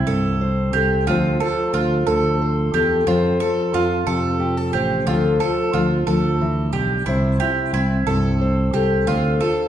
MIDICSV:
0, 0, Header, 1, 4, 480
1, 0, Start_track
1, 0, Tempo, 666667
1, 773, Time_signature, 6, 3, 24, 8
1, 6970, End_track
2, 0, Start_track
2, 0, Title_t, "Mandolin"
2, 0, Program_c, 0, 25
2, 49, Note_on_c, 0, 69, 70
2, 521, Note_off_c, 0, 69, 0
2, 527, Note_on_c, 0, 67, 65
2, 765, Note_off_c, 0, 67, 0
2, 771, Note_on_c, 0, 65, 76
2, 1007, Note_off_c, 0, 65, 0
2, 1010, Note_on_c, 0, 69, 71
2, 1247, Note_off_c, 0, 69, 0
2, 1250, Note_on_c, 0, 65, 66
2, 1487, Note_off_c, 0, 65, 0
2, 1488, Note_on_c, 0, 69, 65
2, 1961, Note_off_c, 0, 69, 0
2, 1971, Note_on_c, 0, 67, 65
2, 2207, Note_off_c, 0, 67, 0
2, 2210, Note_on_c, 0, 65, 75
2, 2446, Note_off_c, 0, 65, 0
2, 2449, Note_on_c, 0, 69, 73
2, 2686, Note_off_c, 0, 69, 0
2, 2693, Note_on_c, 0, 65, 69
2, 2928, Note_off_c, 0, 65, 0
2, 2928, Note_on_c, 0, 69, 73
2, 3400, Note_off_c, 0, 69, 0
2, 3406, Note_on_c, 0, 67, 63
2, 3644, Note_off_c, 0, 67, 0
2, 3648, Note_on_c, 0, 65, 73
2, 3885, Note_off_c, 0, 65, 0
2, 3889, Note_on_c, 0, 69, 76
2, 4126, Note_off_c, 0, 69, 0
2, 4129, Note_on_c, 0, 65, 68
2, 4366, Note_off_c, 0, 65, 0
2, 4369, Note_on_c, 0, 69, 63
2, 4841, Note_off_c, 0, 69, 0
2, 4844, Note_on_c, 0, 67, 66
2, 5080, Note_off_c, 0, 67, 0
2, 5083, Note_on_c, 0, 64, 70
2, 5323, Note_off_c, 0, 64, 0
2, 5327, Note_on_c, 0, 67, 74
2, 5565, Note_off_c, 0, 67, 0
2, 5570, Note_on_c, 0, 64, 66
2, 5807, Note_off_c, 0, 64, 0
2, 5808, Note_on_c, 0, 69, 68
2, 6281, Note_off_c, 0, 69, 0
2, 6290, Note_on_c, 0, 67, 62
2, 6527, Note_off_c, 0, 67, 0
2, 6531, Note_on_c, 0, 65, 82
2, 6768, Note_off_c, 0, 65, 0
2, 6772, Note_on_c, 0, 69, 71
2, 6970, Note_off_c, 0, 69, 0
2, 6970, End_track
3, 0, Start_track
3, 0, Title_t, "Steel-string acoustic guitar"
3, 0, Program_c, 1, 25
3, 0, Note_on_c, 1, 60, 51
3, 0, Note_on_c, 1, 64, 45
3, 0, Note_on_c, 1, 72, 56
3, 47, Note_on_c, 1, 43, 54
3, 292, Note_off_c, 1, 72, 0
3, 295, Note_on_c, 1, 72, 54
3, 540, Note_on_c, 1, 69, 50
3, 746, Note_off_c, 1, 64, 0
3, 768, Note_off_c, 1, 43, 0
3, 771, Note_on_c, 1, 50, 61
3, 776, Note_off_c, 1, 60, 0
3, 778, Note_on_c, 1, 53, 53
3, 782, Note_on_c, 1, 65, 56
3, 784, Note_off_c, 1, 69, 0
3, 787, Note_on_c, 1, 69, 49
3, 792, Note_off_c, 1, 72, 0
3, 794, Note_on_c, 1, 72, 58
3, 1016, Note_off_c, 1, 65, 0
3, 1019, Note_on_c, 1, 65, 50
3, 1484, Note_off_c, 1, 50, 0
3, 1493, Note_on_c, 1, 50, 61
3, 1736, Note_off_c, 1, 72, 0
3, 1739, Note_on_c, 1, 72, 59
3, 1978, Note_off_c, 1, 69, 0
3, 1981, Note_on_c, 1, 69, 55
3, 2184, Note_off_c, 1, 50, 0
3, 2208, Note_off_c, 1, 53, 0
3, 2211, Note_on_c, 1, 53, 66
3, 2214, Note_off_c, 1, 72, 0
3, 2217, Note_on_c, 1, 72, 60
3, 2456, Note_off_c, 1, 69, 0
3, 2459, Note_on_c, 1, 69, 49
3, 2684, Note_off_c, 1, 65, 0
3, 2687, Note_on_c, 1, 65, 52
3, 2926, Note_on_c, 1, 48, 57
3, 3163, Note_off_c, 1, 72, 0
3, 3166, Note_on_c, 1, 67, 55
3, 3292, Note_off_c, 1, 67, 0
3, 3292, Note_off_c, 1, 69, 0
3, 3292, Note_on_c, 1, 69, 44
3, 3412, Note_off_c, 1, 69, 0
3, 3417, Note_on_c, 1, 72, 58
3, 3620, Note_off_c, 1, 48, 0
3, 3621, Note_off_c, 1, 65, 0
3, 3646, Note_off_c, 1, 53, 0
3, 3650, Note_on_c, 1, 50, 58
3, 3655, Note_on_c, 1, 53, 51
3, 3658, Note_on_c, 1, 65, 52
3, 3661, Note_on_c, 1, 69, 51
3, 3664, Note_off_c, 1, 72, 0
3, 3666, Note_on_c, 1, 72, 58
3, 3895, Note_off_c, 1, 65, 0
3, 4124, Note_off_c, 1, 53, 0
3, 4133, Note_on_c, 1, 53, 57
3, 4361, Note_off_c, 1, 53, 0
3, 4369, Note_on_c, 1, 53, 55
3, 4611, Note_off_c, 1, 53, 0
3, 4615, Note_on_c, 1, 52, 61
3, 4846, Note_off_c, 1, 50, 0
3, 4852, Note_off_c, 1, 52, 0
3, 4855, Note_on_c, 1, 50, 53
3, 5093, Note_off_c, 1, 50, 0
3, 5097, Note_on_c, 1, 48, 56
3, 5100, Note_off_c, 1, 72, 0
3, 5102, Note_on_c, 1, 72, 54
3, 5342, Note_on_c, 1, 64, 49
3, 5577, Note_on_c, 1, 60, 55
3, 5815, Note_off_c, 1, 48, 0
3, 5815, Note_on_c, 1, 43, 58
3, 5837, Note_off_c, 1, 69, 0
3, 6054, Note_off_c, 1, 72, 0
3, 6057, Note_on_c, 1, 72, 54
3, 6296, Note_on_c, 1, 69, 57
3, 6509, Note_off_c, 1, 64, 0
3, 6532, Note_off_c, 1, 43, 0
3, 6535, Note_on_c, 1, 50, 64
3, 6538, Note_off_c, 1, 72, 0
3, 6541, Note_on_c, 1, 72, 59
3, 6557, Note_off_c, 1, 60, 0
3, 6777, Note_on_c, 1, 65, 51
3, 6970, Note_off_c, 1, 50, 0
3, 6970, Note_off_c, 1, 65, 0
3, 6970, Note_off_c, 1, 69, 0
3, 6970, Note_off_c, 1, 72, 0
3, 6970, End_track
4, 0, Start_track
4, 0, Title_t, "Fingered electric bass"
4, 0, Program_c, 2, 33
4, 51, Note_on_c, 2, 36, 78
4, 508, Note_off_c, 2, 36, 0
4, 532, Note_on_c, 2, 36, 77
4, 760, Note_off_c, 2, 36, 0
4, 771, Note_on_c, 2, 38, 81
4, 1000, Note_off_c, 2, 38, 0
4, 1250, Note_on_c, 2, 38, 80
4, 1479, Note_off_c, 2, 38, 0
4, 1491, Note_on_c, 2, 38, 85
4, 1948, Note_off_c, 2, 38, 0
4, 1972, Note_on_c, 2, 40, 76
4, 2200, Note_off_c, 2, 40, 0
4, 2212, Note_on_c, 2, 41, 83
4, 2440, Note_off_c, 2, 41, 0
4, 2694, Note_on_c, 2, 41, 81
4, 2921, Note_off_c, 2, 41, 0
4, 2932, Note_on_c, 2, 41, 82
4, 3388, Note_off_c, 2, 41, 0
4, 3409, Note_on_c, 2, 33, 72
4, 3638, Note_off_c, 2, 33, 0
4, 3649, Note_on_c, 2, 38, 85
4, 3879, Note_off_c, 2, 38, 0
4, 4130, Note_on_c, 2, 38, 77
4, 4359, Note_off_c, 2, 38, 0
4, 4368, Note_on_c, 2, 38, 78
4, 4826, Note_off_c, 2, 38, 0
4, 4846, Note_on_c, 2, 35, 73
4, 5077, Note_off_c, 2, 35, 0
4, 5088, Note_on_c, 2, 36, 88
4, 5318, Note_off_c, 2, 36, 0
4, 5566, Note_on_c, 2, 36, 79
4, 5797, Note_off_c, 2, 36, 0
4, 5807, Note_on_c, 2, 36, 86
4, 6266, Note_off_c, 2, 36, 0
4, 6290, Note_on_c, 2, 36, 79
4, 6520, Note_off_c, 2, 36, 0
4, 6529, Note_on_c, 2, 38, 84
4, 6759, Note_off_c, 2, 38, 0
4, 6970, End_track
0, 0, End_of_file